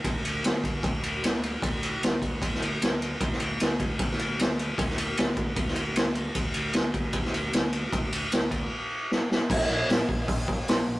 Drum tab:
CC |----------------|----------------|----------------|----------------|
RD |x-x-x-x-x-x-x-x-|x-x-x-x-x-x-x-x-|x-x-x-x-x-x-x-x-|x-x-x-x-x-x-x-x-|
HH |----------------|----------------|----------------|----------------|
SD |----o-------o---|----o----o--o---|-o--o----o--o---|-o--o----o--o---|
BD |o-----o-o-------|o-----o-o-------|o-----o-o-------|o-----o-o-------|

CC |----------------|----------------|x---------------|
RD |x-x-x-x-x-x-x-x-|x-x-x-x---------|----------------|
HH |----------------|----------------|----o---o---o---|
SD |----o----o--o---|----o-------o-o-|-o--o-------o---|
BD |o-----o-o-------|o-----o---------|o-----o-o-o-----|